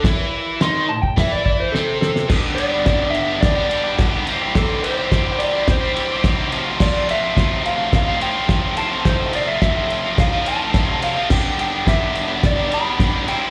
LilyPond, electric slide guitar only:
\new Staff \with { instrumentName = "Electric slide guitar" } { \time 4/4 \key g \mixolydian \tempo 4 = 107 r4 c'''8 a''16 g''16 e''16 d''16 d''16 c''16 a'8 a'8 | b'8 d''4 e''8 d''4 r4 | a'8 c''4 d''8 c''4 r4 | d''8 e''4 f''8 f''8 g''4 a''8 |
c''8 d''16 e''16 e''4 f''8 a''4 f''8 | g''8 g''8 e''4 d''8 b''4 g''8 | }